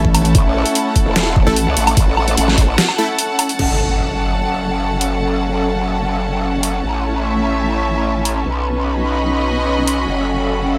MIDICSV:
0, 0, Header, 1, 8, 480
1, 0, Start_track
1, 0, Tempo, 405405
1, 412, Time_signature, 4, 2, 24, 8
1, 12767, End_track
2, 0, Start_track
2, 0, Title_t, "String section"
2, 0, Program_c, 0, 48
2, 0, Note_on_c, 0, 61, 80
2, 0, Note_on_c, 0, 69, 72
2, 0, Note_on_c, 0, 76, 74
2, 0, Note_on_c, 0, 81, 73
2, 86, Note_on_c, 0, 78, 75
2, 228, Note_off_c, 0, 76, 0
2, 4238, Note_off_c, 0, 61, 0
2, 4252, Note_on_c, 0, 61, 70
2, 8479, Note_on_c, 0, 76, 67
2, 8694, Note_off_c, 0, 78, 0
2, 10013, Note_off_c, 0, 76, 0
2, 10359, Note_on_c, 0, 66, 66
2, 10442, Note_on_c, 0, 83, 63
2, 10526, Note_on_c, 0, 75, 74
2, 10782, Note_off_c, 0, 69, 0
2, 10782, Note_off_c, 0, 81, 0
2, 12271, Note_on_c, 0, 69, 74
2, 12397, Note_on_c, 0, 78, 70
2, 12667, Note_off_c, 0, 75, 0
2, 12767, Note_off_c, 0, 61, 0
2, 12767, Note_off_c, 0, 66, 0
2, 12767, Note_off_c, 0, 69, 0
2, 12767, Note_off_c, 0, 78, 0
2, 12767, Note_off_c, 0, 83, 0
2, 12767, End_track
3, 0, Start_track
3, 0, Title_t, "Supersaw synth"
3, 0, Program_c, 1, 81
3, 1736, Note_on_c, 1, 57, 92
3, 1736, Note_on_c, 1, 64, 87
3, 1736, Note_on_c, 1, 69, 108
3, 1841, Note_off_c, 1, 57, 0
3, 1841, Note_off_c, 1, 64, 0
3, 1841, Note_off_c, 1, 69, 0
3, 3532, Note_on_c, 1, 57, 87
3, 3532, Note_on_c, 1, 64, 82
3, 3532, Note_on_c, 1, 69, 102
3, 3644, Note_off_c, 1, 57, 0
3, 3644, Note_off_c, 1, 64, 0
3, 3644, Note_off_c, 1, 69, 0
3, 12767, End_track
4, 0, Start_track
4, 0, Title_t, "String section"
4, 0, Program_c, 2, 48
4, 0, Note_on_c, 2, 57, 78
4, 0, Note_on_c, 2, 61, 76
4, 0, Note_on_c, 2, 64, 86
4, 4205, Note_off_c, 2, 57, 0
4, 4205, Note_off_c, 2, 61, 0
4, 4205, Note_off_c, 2, 64, 0
4, 4252, Note_on_c, 2, 54, 71
4, 4252, Note_on_c, 2, 61, 62
4, 4252, Note_on_c, 2, 69, 73
4, 8054, Note_off_c, 2, 54, 0
4, 8054, Note_off_c, 2, 61, 0
4, 8054, Note_off_c, 2, 69, 0
4, 8092, Note_on_c, 2, 57, 72
4, 8092, Note_on_c, 2, 64, 64
4, 8092, Note_on_c, 2, 73, 78
4, 9993, Note_off_c, 2, 57, 0
4, 9993, Note_off_c, 2, 64, 0
4, 9993, Note_off_c, 2, 73, 0
4, 10012, Note_on_c, 2, 61, 73
4, 10012, Note_on_c, 2, 63, 63
4, 10012, Note_on_c, 2, 71, 78
4, 11913, Note_off_c, 2, 63, 0
4, 11913, Note_off_c, 2, 71, 0
4, 11932, Note_on_c, 2, 54, 72
4, 11932, Note_on_c, 2, 69, 77
4, 12767, Note_off_c, 2, 54, 0
4, 12767, Note_off_c, 2, 61, 0
4, 12767, Note_off_c, 2, 69, 0
4, 12767, End_track
5, 0, Start_track
5, 0, Title_t, "Wobble bass"
5, 0, Program_c, 3, 39
5, 412, Note_on_c, 3, 33, 95
5, 756, Note_off_c, 3, 33, 0
5, 1256, Note_on_c, 3, 28, 102
5, 1716, Note_off_c, 3, 28, 0
5, 1976, Note_on_c, 3, 37, 93
5, 2074, Note_off_c, 3, 37, 0
5, 2092, Note_on_c, 3, 33, 96
5, 2794, Note_off_c, 3, 33, 0
5, 2812, Note_on_c, 3, 33, 99
5, 3292, Note_off_c, 3, 33, 0
5, 4252, Note_on_c, 3, 30, 84
5, 8069, Note_off_c, 3, 30, 0
5, 8092, Note_on_c, 3, 33, 87
5, 9989, Note_off_c, 3, 33, 0
5, 10012, Note_on_c, 3, 35, 85
5, 11909, Note_off_c, 3, 35, 0
5, 11932, Note_on_c, 3, 30, 83
5, 12767, Note_off_c, 3, 30, 0
5, 12767, End_track
6, 0, Start_track
6, 0, Title_t, "Wobble bass"
6, 0, Program_c, 4, 39
6, 0, Note_on_c, 4, 33, 100
6, 393, Note_off_c, 4, 33, 0
6, 1736, Note_on_c, 4, 33, 100
6, 1956, Note_off_c, 4, 33, 0
6, 12767, End_track
7, 0, Start_track
7, 0, Title_t, "Impact"
7, 0, Program_c, 5, 103
7, 4252, Note_on_c, 5, 60, 65
7, 6172, Note_off_c, 5, 60, 0
7, 12767, End_track
8, 0, Start_track
8, 0, Title_t, "Drums"
8, 56, Note_on_c, 9, 36, 62
8, 172, Note_on_c, 9, 46, 91
8, 172, Note_on_c, 9, 77, 56
8, 174, Note_off_c, 9, 36, 0
8, 290, Note_off_c, 9, 46, 0
8, 290, Note_off_c, 9, 77, 0
8, 296, Note_on_c, 9, 42, 52
8, 412, Note_off_c, 9, 42, 0
8, 412, Note_on_c, 9, 36, 115
8, 412, Note_on_c, 9, 42, 78
8, 530, Note_off_c, 9, 36, 0
8, 530, Note_off_c, 9, 42, 0
8, 776, Note_on_c, 9, 42, 52
8, 892, Note_off_c, 9, 42, 0
8, 892, Note_on_c, 9, 42, 76
8, 1010, Note_off_c, 9, 42, 0
8, 1132, Note_on_c, 9, 36, 59
8, 1132, Note_on_c, 9, 42, 51
8, 1250, Note_off_c, 9, 36, 0
8, 1250, Note_off_c, 9, 42, 0
8, 1372, Note_on_c, 9, 38, 110
8, 1372, Note_on_c, 9, 42, 76
8, 1490, Note_off_c, 9, 38, 0
8, 1490, Note_off_c, 9, 42, 0
8, 1612, Note_on_c, 9, 36, 96
8, 1730, Note_off_c, 9, 36, 0
8, 1852, Note_on_c, 9, 42, 82
8, 1970, Note_off_c, 9, 42, 0
8, 2092, Note_on_c, 9, 46, 95
8, 2210, Note_off_c, 9, 46, 0
8, 2216, Note_on_c, 9, 42, 52
8, 2216, Note_on_c, 9, 77, 86
8, 2332, Note_off_c, 9, 42, 0
8, 2332, Note_on_c, 9, 36, 119
8, 2332, Note_on_c, 9, 42, 83
8, 2334, Note_off_c, 9, 77, 0
8, 2450, Note_off_c, 9, 36, 0
8, 2450, Note_off_c, 9, 42, 0
8, 2572, Note_on_c, 9, 77, 60
8, 2691, Note_off_c, 9, 77, 0
8, 2696, Note_on_c, 9, 42, 54
8, 2812, Note_off_c, 9, 42, 0
8, 2812, Note_on_c, 9, 42, 83
8, 2930, Note_off_c, 9, 42, 0
8, 2936, Note_on_c, 9, 38, 36
8, 3052, Note_on_c, 9, 36, 58
8, 3052, Note_on_c, 9, 46, 62
8, 3054, Note_off_c, 9, 38, 0
8, 3170, Note_off_c, 9, 36, 0
8, 3170, Note_off_c, 9, 46, 0
8, 3292, Note_on_c, 9, 38, 109
8, 3292, Note_on_c, 9, 42, 80
8, 3410, Note_off_c, 9, 38, 0
8, 3410, Note_off_c, 9, 42, 0
8, 3416, Note_on_c, 9, 77, 61
8, 3534, Note_off_c, 9, 77, 0
8, 3772, Note_on_c, 9, 42, 81
8, 3890, Note_off_c, 9, 42, 0
8, 4012, Note_on_c, 9, 46, 98
8, 4012, Note_on_c, 9, 77, 50
8, 4130, Note_off_c, 9, 46, 0
8, 4130, Note_off_c, 9, 77, 0
8, 4136, Note_on_c, 9, 42, 57
8, 4252, Note_on_c, 9, 49, 75
8, 4254, Note_off_c, 9, 42, 0
8, 4370, Note_off_c, 9, 49, 0
8, 5932, Note_on_c, 9, 46, 85
8, 6050, Note_off_c, 9, 46, 0
8, 7852, Note_on_c, 9, 46, 80
8, 7970, Note_off_c, 9, 46, 0
8, 9772, Note_on_c, 9, 46, 78
8, 9890, Note_off_c, 9, 46, 0
8, 11692, Note_on_c, 9, 46, 77
8, 11810, Note_off_c, 9, 46, 0
8, 12767, End_track
0, 0, End_of_file